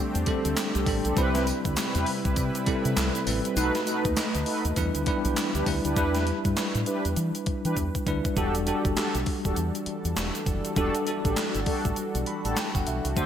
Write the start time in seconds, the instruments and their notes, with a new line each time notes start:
Already playing: analog synth pad D3 A3 C4 G4, tine electric piano G3 C4 D4 A4
0.15 fingered electric bass E2, closed hi-hat, shaker
0.26 tine electric piano G3 C4 D4 A4, kick, closed hi-hat, tambourine
0.45 fingered electric bass D2, closed hi-hat, shaker
0.57 snare, clap, closed hi-hat, tambourine, shaker
0.75 fingered electric bass C2, analog polysynth C4 D4 G4 A4, closed hi-hat, shaker
0.86 fingered electric bass A1, tine electric piano G3 C4 D4 A4, kick, open hi-hat, tambourine
1.05 fingered electric bass B1, analog polysynth C4 D4 G4 A4, closed hi-hat, shaker
1.16 fingered electric bass C2, analog synth pad C3 G3 E4 B4, tine electric piano G3 C4 E4 B4, analog polysynth C4 E4 G4 B4, kick, closed hi-hat, tambourine, shaker
1.35 snare, closed hi-hat, shaker
1.47 closed hi-hat, tambourine, shaker
1.65 fingered electric bass D2, kick, closed hi-hat, shaker
1.76 snare, clap, closed hi-hat, tambourine, shaker
1.95 fingered electric bass E2, analog polysynth C4 E4 G4 B4, closed hi-hat, shaker
2.06 open hi-hat
2.25 fingered electric bass C2, kick, closed hi-hat, shaker
2.36 fingered electric bass C3, kick, closed hi-hat, tambourine, shaker
2.55 closed hi-hat, shaker
2.66 tine electric piano G3 C4 E4 A4, muted fingered electric bass stroke, kick, closed hi-hat, tambourine
2.85 fingered electric bass C3, closed hi-hat, shaker
2.97 fingered electric bass C2, snare, clap, closed hi-hat, tambourine, shaker
3.15 closed hi-hat, shaker
3.27 fingered electric bass A1, tine electric piano G3 C4 E4 B4, open hi-hat, tambourine
3.45 closed hi-hat, shaker
3.56 fingered electric bass B1, analog synth pad A3 D#4, tine electric piano A3 D#4 F#4 B4, analog polysynth D#4 F#4 A4 B4, closed hi-hat, tambourine, shaker
3.75 snare, closed hi-hat, shaker
3.86 analog polysynth D#4 F#4 A4 B4, closed hi-hat, tambourine, shaker
4.05 fingered electric bass D#2, kick, closed hi-hat, shaker
4.16 muted fingered electric bass stroke, snare, clap, closed hi-hat, tambourine, shaker
4.35 fingered electric bass D2, closed hi-hat, shaker
4.46 analog polysynth D#4 F#4 A4 B4, open hi-hat
4.65 fingered electric bass D#2, closed hi-hat, shaker
4.76 fingered electric bass E2, analog synth pad E3 B3 D4 G4, tine electric piano G3 D4 E4 B4, kick, closed hi-hat, tambourine, shaker
4.95 fingered electric bass D2, closed hi-hat, shaker
5.06 tine electric piano G3 D4 E4 B4, kick, closed hi-hat, tambourine
5.25 fingered electric bass B1, closed hi-hat, shaker
5.36 snare, clap, closed hi-hat, tambourine, shaker
5.55 fingered electric bass D2, analog polysynth D4 E4 G4 B4, closed hi-hat, shaker
5.66 fingered electric bass D2, tine electric piano G3 D4 E4 B4, kick, open hi-hat, tambourine
5.85 fingered electric bass D2, analog polysynth D4 E4 G4 B4, closed hi-hat, shaker
5.96 fingered electric bass E2, tine electric piano G3 D4 E4 B4, analog polysynth D4 E4 G4 B4, kick, closed hi-hat, shaker
6.15 snare, closed hi-hat, shaker
6.27 closed hi-hat
6.45 fingered electric bass G2, kick, closed hi-hat, shaker
6.57 snare, clap, closed hi-hat, shaker
6.75 fingered electric bass A2, closed hi-hat, shaker
6.86 analog polysynth D4 E4 G4 B4, closed hi-hat, shaker
7.05 fingered electric bass E2, closed hi-hat, shaker
7.16 fingered electric bass E3, closed hi-hat, shaker
7.35 closed hi-hat, shaker
7.46 muted fingered electric bass stroke, kick, closed hi-hat
7.65 fingered electric bass E3, analog polysynth D4 E4 G4 B4, closed hi-hat, shaker
7.77 fingered electric bass E2, kick, closed hi-hat, shaker
7.95 kick, closed hi-hat, shaker
8.07 fingered electric bass D2, tine electric piano G3 D4 E4 B4, kick, closed hi-hat, shaker
8.25 kick, closed hi-hat, shaker
8.36 fingered electric bass E1, analog synth pad E3 G3 D4 F#4 A4, tine electric piano G3 D4 F#4 A4, analog polysynth D4 F#4 G4 A4, kick, closed hi-hat, shaker
8.55 closed hi-hat, shaker
8.66 tine electric piano G3 D4 F#4 A4, analog polysynth D4 F#4 G4 A4, closed hi-hat, shaker
8.85 fingered electric bass G1, kick, closed hi-hat, shaker
8.96 analog polysynth D4 F#4 G4 A4, snare, clap, closed hi-hat, shaker
9.15 fingered electric bass B1, closed hi-hat, shaker
9.26 kick, open hi-hat
9.45 fingered electric bass E1, analog polysynth D4 F#4 G4 A4, kick, closed hi-hat, shaker
9.56 fingered electric bass E2, closed hi-hat, shaker
9.75 closed hi-hat, shaker
9.86 muted fingered electric bass stroke, closed hi-hat
10.05 fingered electric bass E2, closed hi-hat, shaker
10.16 fingered electric bass E1, snare, clap, closed hi-hat, shaker
10.35 closed hi-hat, shaker
10.46 fingered electric bass F#1, kick, closed hi-hat, shaker
10.65 closed hi-hat, shaker
10.76 fingered electric bass E1, tine electric piano G3 D4 F#4 A4, analog polysynth D4 F#4 G4 A4, kick, closed hi-hat, shaker
10.95 closed hi-hat, shaker
11.07 tine electric piano G3 D4 F#4 A4, closed hi-hat, shaker
11.25 fingered electric bass A1, analog polysynth D4 F#4 G4 A4, kick, closed hi-hat, shaker
11.36 snare, clap, closed hi-hat, shaker
11.55 fingered electric bass G1, closed hi-hat, shaker
11.66 analog polysynth D4 F#4 G4 A4, kick, open hi-hat
11.85 fingered electric bass A1, kick, closed hi-hat, shaker
11.96 muted fingered electric bass stroke, closed hi-hat, shaker
12.15 fingered electric bass B1, closed hi-hat, shaker
12.26 tine electric piano B5, closed hi-hat
12.45 fingered electric bass A1, analog polysynth D4 F#4 G4 A4, tine electric piano A5, closed hi-hat, shaker
12.57 tine electric piano G5, snare, clap, closed hi-hat, shaker
12.75 fingered electric bass G1, tine electric piano F#5, kick, closed hi-hat, shaker
12.87 fingered electric bass B1, tine electric piano E5, closed hi-hat, shaker
13.05 fingered electric bass C2, closed hi-hat, shaker
13.16 fingered electric bass D2, analog synth pad D3 A3 C4, tine electric piano A3 D4 F#4 C5, analog polysynth D4 F#4 A4 C5, kick, closed hi-hat, shaker